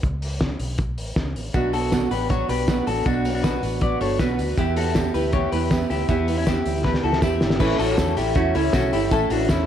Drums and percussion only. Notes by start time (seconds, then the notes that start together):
0.03 kick, closed hi-hat
0.22 open hi-hat
0.41 kick, snare, closed hi-hat
0.60 open hi-hat
0.78 kick, closed hi-hat
0.98 open hi-hat
1.16 kick, snare, closed hi-hat
1.36 open hi-hat
1.54 kick, closed hi-hat, tambourine
1.73 open hi-hat, tambourine
1.92 kick, snare, closed hi-hat, tambourine
2.11 open hi-hat, tambourine
2.30 kick, closed hi-hat, tambourine
2.49 open hi-hat
2.68 kick, snare, tambourine
2.87 open hi-hat, tambourine
3.06 kick, closed hi-hat, tambourine
3.25 open hi-hat, tambourine
3.44 kick, snare, tambourine
3.63 open hi-hat, tambourine
3.81 kick, closed hi-hat, tambourine
4.01 open hi-hat, tambourine
4.19 kick, snare, closed hi-hat, tambourine
4.39 open hi-hat, tambourine
4.57 kick, closed hi-hat, tambourine
4.76 open hi-hat, tambourine
4.95 kick, snare, closed hi-hat, tambourine
5.14 open hi-hat, tambourine
5.33 kick, closed hi-hat
5.52 open hi-hat
5.71 kick, snare, closed hi-hat, tambourine
5.90 open hi-hat, tambourine
6.09 kick, closed hi-hat, tambourine
6.28 open hi-hat, tambourine
6.47 kick, snare, closed hi-hat, tambourine
6.66 open hi-hat, tambourine
6.85 kick, snare
6.94 snare
7.13 snare
7.22 kick, snare, tambourine
7.41 snare, tambourine
7.50 snare
7.60 kick, crash, tambourine
7.79 open hi-hat, tambourine
7.98 kick, snare, closed hi-hat, tambourine
8.17 open hi-hat, tambourine
8.35 kick, closed hi-hat
8.55 open hi-hat, tambourine
8.73 kick, snare, closed hi-hat, tambourine
8.93 open hi-hat, tambourine
9.11 kick, closed hi-hat, tambourine
9.30 open hi-hat, tambourine
9.49 kick, snare, closed hi-hat, tambourine